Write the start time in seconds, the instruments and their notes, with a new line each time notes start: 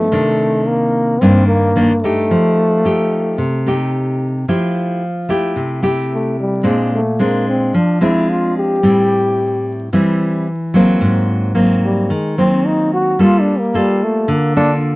Already playing: trombone A3
0.12 nylon-string guitar C3 D#3 D4
0.68 trombone A#3
1.21 nylon-string guitar G2 D#3 A#3 D4, trombone C4
1.48 trombone A#3
1.76 nylon-string guitar D#3 A#3 D4
2.03 trombone A3, nylon-string guitar A3 D#4 G4
2.31 nylon-string guitar F3
2.85 nylon-string guitar A3 D#4 G4
3.38 nylon-string guitar C3
3.66 nylon-string guitar A3 D#4 G4
4.48 nylon-string guitar F3 A3 E4 G4
5.29 nylon-string guitar A3 E4 G4
5.56 nylon-string guitar C3
5.82 nylon-string guitar A3 E4 G4
6.14 trombone A3
6.40 trombone G3
6.63 nylon-string guitar A#2 G#3 C4 D4
6.68 trombone G#3
6.94 trombone A3
7.19 nylon-string guitar G#3 C4 D4, trombone A#3
7.49 trombone C4
7.74 nylon-string guitar F3, trombone D4
8.01 nylon-string guitar G#3 C4 D4, trombone E4
8.30 trombone F4
8.57 trombone G4
8.83 nylon-string guitar A2 G3 C4 E4
9.93 nylon-string guitar E3 G3 C4 E4
10.74 nylon-string guitar F#3 A#3 C4
11.01 nylon-string guitar G#2
11.55 nylon-string guitar F#3 A#3 C4
11.85 trombone G3
12.10 nylon-string guitar D#3, trombone G#3
12.38 nylon-string guitar F#3 A#3 C4, trombone C4
12.67 trombone D#4
12.94 trombone F#4
13.19 nylon-string guitar G3 A#3 F4 A4, trombone F4
13.41 trombone D4
13.59 trombone A#3
13.74 trombone G3, nylon-string guitar A#3 F4 A4
14.03 trombone A3
14.28 nylon-string guitar D3, trombone A#3
14.56 nylon-string guitar A#3 F4 A4, trombone D4